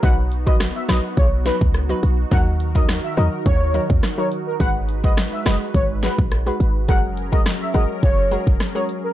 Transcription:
<<
  \new Staff \with { instrumentName = "Soft synth lead" } { \time 4/4 \key ees \minor \tempo 4 = 105 fis''16 r8 dis''16 r16 fes''16 dis''16 r16 des''16 r16 b'16 r4 r16 | ges''16 r8 ees''16 r16 fes''16 ees''16 r16 des''8. r8 des''16 r16 bes'16 | ges''16 r8 ees''16 r16 fes''16 ees''16 r16 des''16 r16 ces''16 r4 r16 | ges''16 r8 ees''16 r16 fes''16 ees''16 r16 des''8. r8 des''16 r16 bes'16 | }
  \new Staff \with { instrumentName = "Synth pluck" } { \time 4/4 \key ees \minor <fis dis' b'>16 r8 <fis dis' b'>16 r8 <fis dis' b'>16 r8. <fis dis' b'>16 r8 <fis dis' b'>16 r8 | <ges ees' bes'>16 r8 <ges ees' bes'>16 r8 <ges ees' bes'>16 r8. <ges ees' bes'>16 r8 <ges ees' bes'>16 r8 | <aes ges' ces''>16 r8 <aes ges' ces''>16 r8 <aes ges' ces''>16 r8. <aes ges' ces''>16 r8 <aes ges' ces''>16 r8 | <aes ges' bes'>16 r8 <aes ges' bes'>16 r8 <aes ges' bes'>16 r8. <aes ges' bes'>16 r8 <aes ges' bes'>16 r8 | }
  \new Staff \with { instrumentName = "Analog synth pad" } { \time 4/4 \key ees \minor << { <b fis'>1 | <ees bes'>1 | <aes ces''>1 | <ges des' bes'>1 | } \\ { dis'1~ | dis'1~ | dis'1 | aes'1 | } >> }
  \new Staff \with { instrumentName = "808-style bass" } { \clef bass \time 4/4 \key ees \minor b,,4~ b,,16 r16 bes,,16 r16 b,,8. des,8. b,,8 | ees,4~ ees,16 r16 fes,16 r16 ees,8. ees,16 r4 | aes,,4~ aes,,16 r16 ges,,16 r16 aes,,8. bes,,8. aes,,8 | ges,,4~ ges,,16 r16 aes,,16 r16 ges,,8. ges,,16 r4 | }
  \new DrumStaff \with { instrumentName = "Drums" } \drummode { \time 4/4 <hh bd>8 hh16 bd16 <hh ss sn>8 <hh ss sn>8 <hh bd>8 <hh sn>16 bd16 <hh ss>8 hh8 | <hh bd>8 hh16 bd16 <hh ss sn>8 hh8 <hh bd>8 hh16 bd16 <hh ss sn>8 hh8 | <hh bd>8 hh16 bd16 <hh ss sn>8 <hh ss sn>8 <hh bd>8 <hh sn>16 bd16 <hh ss>8 hh8 | <hh bd>8 hh16 bd16 <hh ss sn>8 hh8 <hh bd>8 hh16 bd16 <hh ss sn>8 hh8 | }
>>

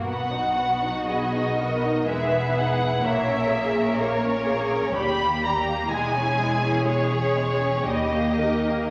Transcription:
<<
  \new Staff \with { instrumentName = "Violin section" } { \time 3/4 \key b \major \tempo 4 = 62 fis''4 dis''4 e''8 fis''8 | e''4 cis''4 b''8 ais''8 | gis''4 cis''4 dis''4 | }
  \new Staff \with { instrumentName = "Viola section" } { \time 3/4 \key b \major r4 gis'8 ais'8 b'4 | cis''8 gis'8 ais'8 gis'8 g'4 | e'4 gis'4 g'8 ais'8 | }
  \new Staff \with { instrumentName = "Violin section" } { \time 3/4 \key b \major << { fis'2 gis'4 | ais'2 g'4 | gis'2 g'4 | } \\ { b16 dis'16 b16 dis'16 b16 dis'16 b16 dis'16 gis16 b16 dis'16 e'16 | ais16 cis'16 ais16 cis'16 ais16 cis'16 ais16 cis'16 g16 ais16 g16 ais16 | gis16 cis'16 gis16 cis'16 gis16 cis'16 gis16 cis'16 g16 ais16 dis'16 ais16 | } >> }
  \new Staff \with { instrumentName = "Cello section" } { \clef bass \time 3/4 \key b \major b,2 e,4 | ais,2 dis,4 | e,2 dis,4 | }
  \new Staff \with { instrumentName = "Double bass section" } { \clef bass \time 3/4 \key b \major b,,2 e,,4 | ais,,2 dis,4 | e,,2 dis,4 | }
>>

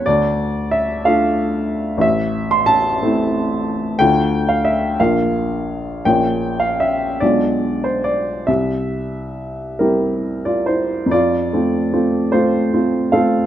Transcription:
\new Staff \with { instrumentName = "Upright piano" } { \time 6/8 \key d \minor \tempo 4. = 56 << { d''4 e''8 f''8 r4 | \key f \major e''8. c'''16 a''2 | g''8. f''16 e''8 f''4. | g''8. f''16 e''8 d''8. c''16 d''8 |
e''4. <e' bes'>8. <f' d''>16 <e' c''>8 | <f' d''>4. <f' c''>4 <a' f''>8 | } \\ { d,4. <a d' f'>4. | a,,4. <a c' e'>4. | <d, a d' f'>4. <bes,, bes d' f'>4. | <bes,, bes des' f'>4. <b,, gis d' f'>4. |
c,4. <g c' g'>4. | f,8 <a c' f'>8 <a c' f'>8 <a c'>8 <a c' f'>8 <a c' f'>8 | } >> }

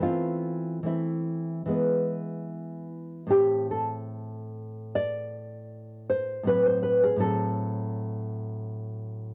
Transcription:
\new Staff \with { instrumentName = "Nylon-string guitar" } { \time 4/4 \key a \minor \tempo 4 = 76 << { f'4 e'2~ e'8 r8 | g'8 a'4. d''4. c''8 | b'16 c''16 b'16 gis'16 a'2~ a'8 r8 | } \\ { <e a c'>4 <e a c'>4 <e gis b>2 | <a, a c'>1 | <a, fis c'>4 <a, fis c'>2. | } >> }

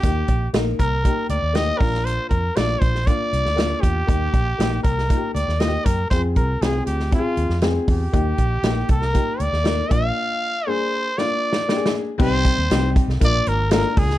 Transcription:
<<
  \new Staff \with { instrumentName = "Trumpet" } { \time 4/4 \key ees \major \tempo 4 = 118 g'4 r8 bes'4 d''8 ees''8 bes'8 | c''8 bes'8 d''8 c''8 d''4. g'8~ | g'4. bes'4 d''8 ees''8 bes'8 | c''8 bes'8 aes'8 g'8 f'4 r8 g'8~ |
g'4. bes'4 d''4 f''8~ | f''4 c''4 d''4. r8 | c''4. r8 d''8 bes'8 bes'8 aes'8 | }
  \new Staff \with { instrumentName = "Upright piano" } { \time 4/4 \key ees \major <bes ees' g'>8. r16 <bes ees' bes'>8. r16 <bes ees' g'>8. r16 <bes ees' g'>8 <bes d' f'>8~ | <bes d' f'>8 r8 <bes d' f'>8. r16 <bes d' f'>8. r16 <bes d' f'>8. r16 | <bes ees' g'>8. r16 <bes ees' g'>8. r16 <bes ees' f' g'>8. r16 <bes ees' f' g'>8. r16 | <c' f' aes'>8. r16 <c' f' aes'>8. r16 <c' f' g' aes'>8. r16 <c' f' aes'>8. r16 |
<bes ees' g'>8. r16 <bes ees' g'>8. r16 <bes ees' g'>8. r16 <bes ees' bes'>8 <bes d' f'>8~ | <bes d' f'>8 r8 <bes d' aes'>8. r16 <bes d' f'>8. r16 <bes d' g' aes'>8. r16 | <g c' ees' g'>8. r16 <g c' ees' g'>8. r16 <bes d' f' bes'>8. r16 <bes d' f' a' bes'>8. r16 | }
  \new Staff \with { instrumentName = "Fingered electric bass" } { \clef bass \time 4/4 \key ees \major ees,8 bes,,8 bes,,8 c,8. r16 d,16 ees,8. bes,,8~ | bes,,8 f,8 bes,,8 bes,,8. r16 c,16 d,8. fes,8 | ees,8 bes,,8 bes,,8 c,8. r16 d,16 ees,8. ges,8 | f,8 c,8 c,8 d,8. r16 ees,16 f,8. fes,8 |
ees,8 bes,,8 bes,,8 c,8. r16 d,16 ees,8. bes,,8 | r1 | c,8. ees,16 c,8. c,16 bes,,8 aes,,4 des,8 | }
  \new DrumStaff \with { instrumentName = "Drums" } \drummode { \time 4/4 <hh bd>8 <hh bd>8 <hh sn>8 <hh bd>8 <hh bd>8 hh8 <hh sn>8 <hho bd>16 sn16 | hh8 <hh bd>8 <hh sn>8 <hh bd>16 sn16 <hh bd>8 hh16 sn16 <hh sn>8 <hh bd>8 | <hh bd>8 <hh bd>8 <hh sn>8 <hh bd>16 sn16 <hh bd>8 hh16 sn16 <hh sn>8 <hh bd>8 | <hh bd>8 <hh bd>8 <hh sn>8 hh16 sn16 <hh bd>8 hh16 sn16 <hh sn>8 <hho bd>8 |
<hh bd>8 <hh bd>8 <hh sn>8 <hh bd>16 sn16 <hh bd>8 hh16 sn16 <hh sn>8 <hh bd>8 | r4 r4 \tuplet 3/2 { sn8 r8 sn8 sn8 sn8 r8 } | <cymc bd>8 <hh bd>8 <hh sn>8 <hh bd>16 sn16 <hh bd>8 hh8 <hh sn>8 <hho bd>16 sn16 | }
>>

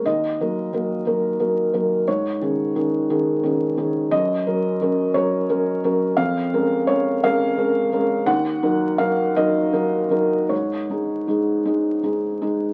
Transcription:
\new Staff \with { instrumentName = "Felt piano" } { \time 6/8 \key aes \mixolydian \tempo 4. = 58 << { ees''2. | des''4 r2 | ees''4. des''4. | f''4 des''8 f''4. |
ges''4 f''8 ees''4. | des''2~ des''8 r8 | } \\ { ees,8 <ges bes bes'>8 <ges bes bes'>8 <ges bes bes'>8 <ges bes bes'>8 <ges bes bes'>8 | aes,8 <ees des' aes'>8 <ees des' aes'>8 <ees des' aes'>8 <ees des' aes'>8 <ees des' aes'>8 | ges,8 <ges des' bes'>8 <ges des' bes'>8 <ges des' bes'>8 <ges des' bes'>8 <ges des' bes'>8 | f,8 <aes des' bes'>8 <aes des' bes'>8 <aes des' bes'>8 <aes des' bes'>8 <aes des' bes'>8 |
ees,8 <ges ees' bes'>8 <ges ees' bes'>8 <ges ees' bes'>8 <ges ees' bes'>8 <ges ees' bes'>8 | aes,8 <aes ees' aes'>8 <aes ees' aes'>8 <aes ees' aes'>8 <aes ees' aes'>8 <aes ees' aes'>8 | } >> }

